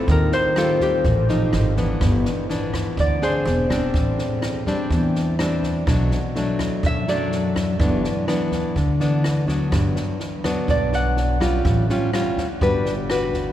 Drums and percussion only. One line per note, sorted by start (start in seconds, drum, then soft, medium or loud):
0.08 kick medium
0.08 snare soft
0.32 snare soft
0.56 cross-stick medium
0.56 snare soft
0.80 kick soft
0.80 snare soft
1.04 kick medium
1.04 snare soft
1.29 snare soft
1.53 cross-stick medium
1.53 snare soft
1.77 kick soft
1.77 snare soft
2.01 kick medium
2.01 cross-stick medium
2.01 snare soft
2.25 snare soft
2.50 snare soft
2.73 kick soft
2.73 cross-stick medium
2.73 snare soft
2.97 kick medium
2.97 snare soft
3.22 snare soft
3.46 snare soft
3.70 kick soft
3.70 cross-stick medium
3.70 snare soft
3.94 kick medium
3.94 snare soft
4.18 snare soft
4.42 cross-stick medium
4.42 snare soft
4.66 kick soft
4.66 snare soft
4.91 kick medium
4.91 snare soft
5.15 snare soft
5.39 cross-stick medium
5.39 snare soft
5.63 kick soft
5.63 snare soft
5.87 kick medium
5.87 cross-stick medium
5.87 snare soft
6.11 snare soft
6.35 snare soft
6.59 kick soft
6.59 cross-stick medium
6.59 snare soft
6.83 kick medium
6.83 snare soft
7.08 snare soft
7.32 snare soft
7.56 kick soft
7.56 cross-stick medium
7.56 snare soft
7.80 kick medium
7.80 snare soft
8.04 snare soft
8.28 cross-stick medium
8.28 snare soft
8.52 kick soft
8.52 snare soft
8.76 kick medium
8.76 snare soft
9.00 snare soft
9.24 cross-stick medium
9.24 snare soft
9.48 kick soft
9.48 snare soft
9.72 kick medium
9.72 cross-stick medium
9.72 snare soft
9.96 snare soft
10.20 snare soft
10.44 kick soft
10.44 cross-stick medium
10.44 snare soft
10.68 kick medium
10.68 snare soft
10.93 snare soft
11.17 snare soft
11.41 kick soft
11.41 cross-stick medium
11.41 snare soft
11.65 kick medium
11.65 snare soft
11.89 snare soft
12.13 cross-stick medium
12.13 snare soft
12.37 kick soft
12.37 snare soft
12.61 kick medium
12.61 snare soft
12.86 snare soft
13.10 cross-stick medium
13.10 snare soft
13.34 kick soft
13.34 snare soft